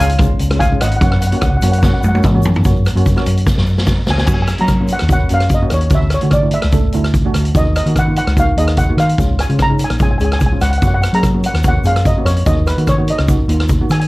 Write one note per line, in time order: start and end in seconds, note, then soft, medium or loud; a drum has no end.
0.00 0.32 C#2 medium
0.00 0.12 G#3 medium
0.00 0.12 C#4 medium
0.00 0.12 F4 medium
0.00 0.57 F5 medium
0.00 0.59 G#5 loud
0.00 shaker loud
0.09 closed hi-hat medium
0.18 0.38 G#3 medium
0.18 0.38 C#4 medium
0.18 0.38 F4 medium
0.18 kick loud
0.18 cross-stick medium
0.18 closed hi-hat medium
0.18 shaker medium
0.39 0.73 C#2 medium
0.39 closed hi-hat medium
0.39 shaker medium
0.51 0.62 G#3 medium
0.51 0.63 C#4 medium
0.51 0.62 F4 medium
0.51 cross-stick medium
0.51 closed hi-hat medium
0.59 0.79 F5 medium
0.59 0.79 G#5 medium
0.59 kick medium
0.59 closed hi-hat medium
0.59 shaker medium
0.72 0.89 G#3 medium
0.72 0.90 C#4 medium
0.72 0.90 F4 medium
0.81 0.98 G#1 medium
0.81 0.88 D#5 medium
0.81 0.86 F#5 medium
0.81 cross-stick medium
0.81 closed hi-hat medium
0.81 shaker medium
0.88 0.95 F#5 medium
0.88 closed hi-hat medium
0.93 shaker soft
0.97 1.03 F#5 medium
1.01 1.34 F#2 loud
1.01 1.19 A#3 medium
1.01 1.20 C#4 medium
1.01 1.19 F#4 medium
1.01 1.10 F#5 medium
1.01 kick loud
1.01 closed hi-hat medium
1.01 shaker medium
1.11 1.18 F#5 medium
1.11 cross-stick medium
1.21 1.26 F#5 medium
1.21 closed hi-hat medium
1.21 shaker medium
1.27 1.34 F#5 medium
1.32 1.51 A#3 medium
1.32 1.51 C#4 medium
1.32 1.51 F#4 medium
1.32 closed hi-hat medium
1.32 shaker soft
1.37 1.42 F#5 soft
1.41 1.58 C#2 medium
1.41 1.49 F#5 medium
1.41 kick medium
1.41 cross-stick medium
1.41 closed hi-hat medium
1.41 shaker medium
1.50 1.56 F#5 soft
1.57 1.62 F#5 medium
1.62 1.95 F#2 medium
1.62 1.76 A#3 medium
1.62 1.76 C#4 medium
1.62 1.76 F#4 medium
1.62 1.70 F#5 soft
1.62 closed hi-hat medium
1.62 shaker medium
1.72 1.77 F#5 medium
1.72 closed hi-hat medium
1.72 shaker soft
1.78 1.85 F#5 medium
1.83 2.01 A#3 medium
1.83 2.01 C#4 medium
1.83 2.02 F#4 medium
1.83 1.92 F#5 medium
1.83 kick loud
1.83 snare medium
1.83 shaker medium
1.94 2.00 F#5 medium
2.01 2.20 F#2 medium
2.01 2.07 F#5 medium
2.01 high tom medium
2.01 shaker medium
2.08 2.15 F#5 medium
2.14 2.26 A#3 medium
2.14 2.26 C#4 medium
2.14 2.26 F#4 medium
2.14 high tom medium
2.14 shaker soft
2.23 2.42 G#2 medium
2.23 kick medium
2.23 mid tom medium
2.23 shaker medium
2.34 2.52 A#3 medium
2.34 2.53 C#4 medium
2.34 2.53 F#4 medium
2.42 2.63 F#2 medium
2.42 floor tom medium
2.42 shaker loud
2.54 floor tom medium
2.54 shaker soft
2.64 2.90 F#2 medium
2.64 2.83 A#3 medium
2.64 2.83 C#4 medium
2.64 2.83 F#4 medium
2.64 kick loud
2.64 closed hi-hat medium
2.64 shaker medium
2.76 shaker soft
2.86 cross-stick medium
2.86 closed hi-hat medium
2.86 shaker medium
2.95 3.19 F#2 medium
2.95 3.08 A#3 medium
2.95 3.08 C#4 medium
2.95 3.08 F#4 medium
2.95 closed hi-hat medium
2.95 shaker soft
3.06 kick medium
3.06 closed hi-hat medium
3.06 shaker medium
3.16 3.64 A#3 medium
3.16 3.65 C#4 medium
3.16 3.65 F#4 medium
3.16 cross-stick medium
3.16 shaker soft
3.26 3.51 F#2 medium
3.26 closed hi-hat medium
3.26 shaker medium
3.37 closed hi-hat medium
3.47 kick loud
3.47 snare medium
3.47 shaker medium
3.58 3.98 F#2 medium
3.58 snare medium
3.66 shaker medium
3.77 snare medium
3.77 shaker soft
3.86 kick medium
3.86 snare medium
3.86 shaker medium
4.06 4.25 C#2 medium
4.06 snare medium
4.06 shaker medium
4.10 4.17 G#5 medium
4.18 4.25 G#5 medium
4.18 snare medium
4.18 shaker soft
4.27 4.53 F#2 medium
4.27 4.47 A#3 medium
4.27 4.47 C#4 medium
4.27 4.47 F#4 medium
4.27 4.32 G#5 medium
4.27 kick loud
4.27 crash medium
4.27 shaker loud
4.34 4.40 G#5 medium
4.42 4.47 G#5 medium
4.47 4.54 G#5 medium
4.47 cross-stick medium
4.47 closed hi-hat medium
4.47 shaker medium
4.58 4.93 F#3 medium
4.58 4.71 A#3 medium
4.58 4.71 C#4 medium
4.58 4.71 F#4 medium
4.58 4.88 A#5 medium
4.58 closed hi-hat medium
4.68 kick medium
4.68 cross-stick medium
4.68 closed hi-hat medium
4.68 shaker medium
4.80 4.98 A#3 medium
4.80 4.98 C#4 medium
4.80 4.98 F4 medium
4.88 closed hi-hat medium
4.88 shaker medium
4.93 5.11 F#5 medium
4.99 5.25 D#2 medium
4.99 cross-stick medium
4.99 closed hi-hat medium
5.08 5.23 A#3 medium
5.08 5.23 C#4 medium
5.08 5.23 F#4 medium
5.08 kick medium
5.08 closed hi-hat soft
5.08 shaker medium
5.12 5.32 F#5 medium
5.29 5.63 F#2 medium
5.29 5.49 A#3 medium
5.29 5.49 C#4 medium
5.29 5.49 F#4 medium
5.29 closed hi-hat medium
5.29 shaker medium
5.34 5.51 F5 medium
5.40 cross-stick medium
5.40 closed hi-hat medium
5.49 kick medium
5.49 closed hi-hat medium
5.49 shaker medium
5.54 5.71 D#5 medium
5.62 5.80 A#3 medium
5.62 5.80 C#4 medium
5.62 5.80 F#4 medium
5.70 5.88 D#2 medium
5.70 5.82 C#5 medium
5.70 cross-stick medium
5.70 closed hi-hat medium
5.70 shaker medium
5.81 closed hi-hat soft
5.90 6.16 D2 medium
5.90 6.10 A3 medium
5.90 6.10 D4 medium
5.90 6.10 F#4 medium
5.90 kick loud
5.90 closed hi-hat medium
5.90 shaker medium
5.95 6.14 E5 medium
6.10 cross-stick medium
6.10 closed hi-hat medium
6.10 shaker medium
6.14 6.34 C#5 medium
6.21 6.56 D3 medium
6.21 6.34 A3 medium
6.21 6.34 D4 medium
6.21 6.34 F#4 medium
6.21 closed hi-hat medium
6.31 6.52 D5 medium
6.31 kick medium
6.31 cross-stick medium
6.31 closed hi-hat medium
6.31 shaker medium
6.42 6.61 A3 medium
6.42 6.61 D4 medium
6.42 6.61 E4 medium
6.51 6.91 E5 medium
6.51 closed hi-hat medium
6.51 shaker medium
6.62 6.88 C#2 medium
6.62 cross-stick medium
6.62 closed hi-hat medium
6.72 6.86 A3 medium
6.72 6.86 D4 medium
6.72 6.86 A4 medium
6.72 kick medium
6.72 closed hi-hat medium
6.72 shaker medium
6.92 7.27 D2 medium
6.92 7.12 A3 medium
6.92 7.12 D4 medium
6.92 7.13 E4 medium
6.92 closed hi-hat medium
6.92 shaker medium
7.04 cross-stick medium
7.04 closed hi-hat medium
7.14 kick medium
7.14 closed hi-hat medium
7.14 shaker medium
7.25 7.43 A3 medium
7.25 7.43 D4 medium
7.25 7.44 F#4 medium
7.34 7.51 D2 medium
7.34 cross-stick medium
7.34 closed hi-hat medium
7.34 shaker medium
7.45 closed hi-hat medium
7.55 7.80 D#2 medium
7.55 7.74 A#3 medium
7.55 7.74 D#4 medium
7.55 7.74 F#4 medium
7.55 7.66 D#5 medium
7.55 kick loud
7.55 closed hi-hat medium
7.55 shaker medium
7.76 7.95 D#5 medium
7.76 cross-stick medium
7.76 closed hi-hat medium
7.76 shaker medium
7.86 8.19 D#3 medium
7.86 7.98 A#3 medium
7.86 7.98 D#4 medium
7.86 7.98 F#4 medium
7.86 closed hi-hat medium
7.96 8.16 F#5 medium
7.96 kick medium
7.96 cross-stick medium
7.96 closed hi-hat medium
7.96 shaker medium
8.07 8.25 A#3 medium
8.07 8.26 D#4 medium
8.07 8.26 F4 medium
8.16 8.27 F#5 medium
8.16 closed hi-hat medium
8.16 shaker medium
8.27 8.51 C#2 medium
8.27 cross-stick medium
8.27 closed hi-hat medium
8.37 8.50 A#3 medium
8.37 8.50 D#4 medium
8.37 8.50 F#4 medium
8.37 8.59 F5 medium
8.37 kick medium
8.37 closed hi-hat medium
8.37 shaker medium
8.57 8.90 D#2 medium
8.57 8.77 A#3 medium
8.57 8.77 D#4 medium
8.57 8.77 G#4 medium
8.57 8.79 D#5 medium
8.57 closed hi-hat medium
8.57 shaker medium
8.68 cross-stick medium
8.68 closed hi-hat medium
8.77 8.87 F#5 medium
8.77 kick medium
8.77 closed hi-hat medium
8.77 shaker medium
8.89 9.07 A#3 medium
8.89 9.07 D#4 medium
8.89 9.07 F#4 medium
8.97 9.14 D#3 medium
8.97 9.41 F5 medium
8.97 cross-stick medium
8.97 closed hi-hat medium
8.97 shaker medium
9.09 closed hi-hat medium
9.18 9.44 C#2 medium
9.18 9.37 G#3 medium
9.18 9.37 C#4 medium
9.18 9.38 F4 medium
9.18 kick medium
9.18 closed hi-hat medium
9.18 shaker medium
9.39 9.61 G#5 medium
9.39 cross-stick medium
9.39 closed hi-hat medium
9.39 shaker medium
9.49 9.83 C#3 medium
9.49 9.62 G#3 medium
9.49 9.62 C#4 medium
9.49 9.62 F4 medium
9.49 closed hi-hat soft
9.59 9.80 A#5 loud
9.59 kick medium
9.59 cross-stick medium
9.59 closed hi-hat medium
9.59 shaker medium
9.69 9.88 G#3 medium
9.69 9.88 C#4 medium
9.69 9.88 D#4 medium
9.79 closed hi-hat medium
9.79 shaker medium
9.84 9.93 G#5 medium
9.90 10.15 A#1 medium
9.90 cross-stick medium
9.90 closed hi-hat medium
9.99 10.13 G#3 medium
9.99 10.13 C#4 medium
9.99 10.13 F4 medium
9.99 10.10 G#5 medium
9.99 kick medium
9.99 closed hi-hat soft
9.99 shaker medium
10.11 10.17 G#5 medium
10.18 10.53 C#2 medium
10.18 10.39 G#3 medium
10.18 10.39 C#4 medium
10.18 10.40 G#4 medium
10.18 10.23 G#5 medium
10.18 closed hi-hat medium
10.18 shaker medium
10.25 10.32 G#5 medium
10.32 10.38 G#5 medium
10.32 cross-stick medium
10.32 closed hi-hat soft
10.39 10.45 G#5 medium
10.39 kick medium
10.39 closed hi-hat medium
10.39 shaker medium
10.46 10.54 G#5 medium
10.52 10.71 G#3 medium
10.52 10.71 C#4 medium
10.52 10.71 F4 medium
10.61 10.78 C#2 medium
10.61 10.69 F#5 medium
10.61 cross-stick medium
10.61 closed hi-hat medium
10.61 shaker medium
10.71 10.77 F#5 medium
10.71 closed hi-hat medium
10.78 10.85 F#5 medium
10.78 closed hi-hat medium
10.82 11.08 F#2 medium
10.82 11.01 A#3 medium
10.82 11.02 C#4 medium
10.82 11.02 F#4 medium
10.82 kick medium
10.82 shaker medium
10.87 10.93 F#5 medium
10.94 11.00 F#5 medium
11.02 11.08 F#5 medium
11.02 cross-stick medium
11.02 closed hi-hat medium
11.02 shaker medium
11.13 11.46 F#3 medium
11.13 11.26 A#3 medium
11.13 11.26 C#4 medium
11.13 11.26 G#4 medium
11.13 11.45 A#5 medium
11.13 closed hi-hat medium
11.23 kick medium
11.23 cross-stick medium
11.23 closed hi-hat medium
11.23 shaker medium
11.34 11.53 A#3 medium
11.34 11.53 C#4 medium
11.34 11.53 F#4 medium
11.44 11.66 F#5 medium
11.44 closed hi-hat medium
11.44 shaker medium
11.54 11.78 D#2 medium
11.54 cross-stick medium
11.54 closed hi-hat medium
11.63 11.77 A#3 medium
11.63 11.78 C#4 medium
11.63 11.78 F#4 medium
11.63 kick loud
11.63 closed hi-hat medium
11.63 shaker medium
11.68 11.87 F#5 medium
11.84 12.17 F#2 medium
11.84 12.04 A#3 medium
11.84 12.04 C#4 medium
11.84 12.04 G#4 medium
11.84 12.07 F5 medium
11.84 closed hi-hat medium
11.84 shaker medium
11.96 cross-stick medium
11.96 closed hi-hat medium
12.05 12.27 D#5 medium
12.05 kick medium
12.05 closed hi-hat medium
12.05 shaker medium
12.18 12.35 A#3 medium
12.18 12.35 C#4 medium
12.18 12.36 F#4 medium
12.25 12.42 F2 medium
12.25 12.45 C#5 medium
12.25 cross-stick medium
12.25 closed hi-hat medium
12.25 shaker medium
12.37 closed hi-hat medium
12.46 12.72 D#2 medium
12.46 12.65 A#3 medium
12.46 12.65 D#4 medium
12.46 12.66 F#4 medium
12.46 12.66 D#5 medium
12.46 kick loud
12.46 closed hi-hat medium
12.46 shaker medium
12.67 12.76 B4 medium
12.67 cross-stick medium
12.67 closed hi-hat medium
12.67 shaker medium
12.77 13.10 D#3 medium
12.77 12.90 A#3 medium
12.77 12.90 D#4 medium
12.77 12.90 F#4 medium
12.77 closed hi-hat soft
12.87 13.09 C#5 medium
12.87 kick medium
12.87 cross-stick medium
12.87 closed hi-hat medium
12.87 shaker medium
12.98 13.17 A#3 medium
12.98 13.17 D#4 medium
12.98 13.17 F#4 medium
13.07 13.47 D#5 medium
13.07 closed hi-hat medium
13.07 shaker medium
13.18 13.43 C#2 medium
13.18 cross-stick medium
13.18 closed hi-hat medium
13.28 13.41 A#3 medium
13.28 13.41 D#4 medium
13.28 13.41 F#4 medium
13.28 kick medium
13.28 closed hi-hat medium
13.28 shaker medium
13.48 13.81 D#2 medium
13.48 13.67 A#3 medium
13.48 13.68 D#4 medium
13.48 13.68 F4 medium
13.48 closed hi-hat medium
13.48 shaker medium
13.60 cross-stick medium
13.60 closed hi-hat medium
13.68 kick medium
13.68 closed hi-hat medium
13.68 shaker medium
13.81 13.99 A#3 medium
13.81 13.99 D#4 medium
13.81 13.99 F#4 medium
13.89 14.06 D#3 medium
13.89 13.99 G#5 medium
13.89 cross-stick medium
13.89 closed hi-hat medium
13.89 shaker medium
14.00 14.06 G#5 medium
14.00 closed hi-hat medium